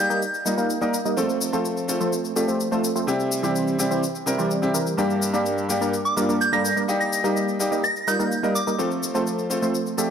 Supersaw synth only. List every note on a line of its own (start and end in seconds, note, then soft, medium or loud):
0.10 0.23 G3 medium
0.10 0.23 A#3 medium
0.10 0.23 D#4 medium
0.10 0.23 A#4 medium
0.10 0.23 D#5 medium
0.46 0.55 G3 medium
0.46 0.55 A#3 medium
0.46 0.55 D#4 medium
0.46 0.55 A#4 medium
0.46 0.55 D#5 medium
0.58 0.79 G3 loud
0.58 0.79 A#3 medium
0.58 0.79 D#4 medium
0.58 0.79 A#4 medium
0.58 0.79 F5 loud
0.82 0.95 G3 medium
0.82 0.95 A#3 medium
0.82 0.95 D#4 medium
0.82 0.95 A#4 medium
0.82 0.95 D#5 loud
1.05 1.14 G3 medium
1.05 1.14 A#3 medium
1.05 1.14 D#4 medium
1.05 1.14 A#4 medium
1.05 1.14 D#5 medium
1.17 1.50 F3 medium
1.17 1.50 A3 medium
1.17 1.50 C4 medium
1.17 1.50 A4 medium
1.17 1.50 C5 medium
1.53 1.98 F3 medium
1.53 1.98 A3 medium
1.53 1.98 C4 medium
1.53 1.98 A4 medium
1.53 1.98 C5 medium
2.00 2.33 F3 medium
2.00 2.33 A3 medium
2.00 2.33 C4 medium
2.00 2.33 A4 medium
2.00 2.33 C5 loud
2.36 2.46 F3 medium
2.36 2.46 A3 medium
2.36 2.46 C4 medium
2.36 2.46 A4 medium
2.36 2.46 D5 medium
2.48 2.69 F3 medium
2.48 2.69 A3 medium
2.48 2.69 C4 medium
2.48 2.69 A4 medium
2.48 2.69 C5 medium
2.72 2.93 F3 medium
2.72 2.93 A3 medium
2.72 2.93 C4 medium
2.72 2.93 A4 medium
2.72 2.93 C5 loud
2.96 3.06 F3 medium
2.96 3.06 A3 medium
2.96 3.06 C4 medium
2.96 3.06 A4 medium
2.96 3.06 C5 medium
3.43 3.88 E3 medium
3.43 3.88 G3 medium
3.43 3.88 C4 medium
3.43 3.88 G4 medium
3.43 3.88 C5 loud
3.91 4.04 E3 medium
3.91 4.04 G3 medium
3.91 4.04 C4 medium
3.91 4.04 G4 medium
3.91 4.04 C5 medium
4.38 4.71 E3 loud
4.38 4.71 G3 medium
4.38 4.71 C4 medium
4.38 4.71 G4 medium
4.38 4.71 D5 loud
4.74 4.95 E3 medium
4.74 4.95 G3 medium
4.74 4.95 C4 medium
4.74 4.95 G4 medium
4.74 4.95 A#4 medium
4.98 5.31 G3 medium
4.98 5.31 A#3 medium
4.98 5.31 D4 medium
4.98 5.31 A#4 medium
4.98 5.31 D5 medium
5.34 5.78 G3 medium
5.34 5.78 A#3 medium
5.34 5.79 D4 medium
5.34 5.79 A#4 medium
5.34 5.79 D5 medium
5.81 6.14 G3 medium
5.81 6.14 A#3 medium
5.81 6.14 D4 medium
5.81 6.14 A#4 medium
5.81 6.14 D5 loud
6.17 6.27 G3 medium
6.17 6.27 A#3 medium
6.17 6.27 D4 medium
6.17 6.27 A#4 medium
6.17 6.27 F5 medium
6.29 6.50 G3 medium
6.29 6.50 A#3 medium
6.29 6.50 D4 medium
6.29 6.50 A#4 medium
6.29 6.50 D5 medium
6.53 6.74 G3 loud
6.53 6.74 A#3 medium
6.53 6.74 D4 medium
6.53 6.74 A#4 medium
6.53 6.74 D5 loud
6.76 6.87 G3 medium
6.76 6.87 A#3 medium
6.76 6.87 D4 medium
6.76 6.87 A#4 medium
6.76 6.87 D5 medium
7.24 7.69 G3 medium
7.24 7.69 A#3 medium
7.24 7.69 D#4 medium
7.24 7.69 A#4 medium
7.24 7.69 D#5 medium
7.72 7.85 G3 medium
7.72 7.85 A#3 medium
7.72 7.85 D#4 medium
7.72 7.85 A#4 medium
7.72 7.85 D#5 medium
8.07 8.17 G3 medium
8.07 8.17 A#3 medium
8.07 8.17 D#4 medium
8.07 8.17 A#4 medium
8.07 8.17 D#5 medium
8.19 8.40 G3 medium
8.19 8.40 A#3 medium
8.19 8.40 D#4 medium
8.19 8.40 A#4 medium
8.19 8.40 F5 loud
8.43 8.57 G3 loud
8.43 8.57 A#3 medium
8.43 8.57 D#4 medium
8.43 8.57 A#4 medium
8.43 8.57 D#5 loud
8.67 8.76 G3 medium
8.67 8.76 A#3 medium
8.67 8.76 D#4 medium
8.67 8.76 A#4 medium
8.67 8.76 D#5 medium
8.79 9.12 F3 medium
8.79 9.12 A3 medium
8.79 9.12 C4 medium
8.79 9.12 A4 medium
8.79 9.12 C5 medium
9.15 9.59 F3 medium
9.15 9.59 A3 medium
9.15 9.59 C4 medium
9.15 9.59 A4 medium
9.15 9.60 C5 medium
9.62 9.95 F3 medium
9.62 9.95 A3 medium
9.62 9.95 C4 medium
9.62 9.95 A4 medium
9.62 9.95 C5 loud
9.98 10.08 F3 medium
9.98 10.08 A3 medium
9.98 10.08 C4 medium
9.98 10.08 A4 medium
9.98 10.08 D5 medium